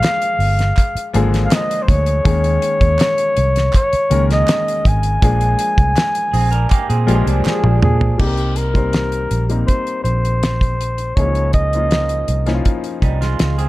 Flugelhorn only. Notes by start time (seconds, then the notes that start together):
Already playing: F5
1.45 F5
1.54 D#5
1.82 C5
1.89 C#5
3.76 C#5
4.33 D#5
4.88 G#5
7.47 G#4
7.83 G#4
8.20 G4
8.57 A#4
9.67 C5
10.04 C5
11.16 C#5
11.54 D#5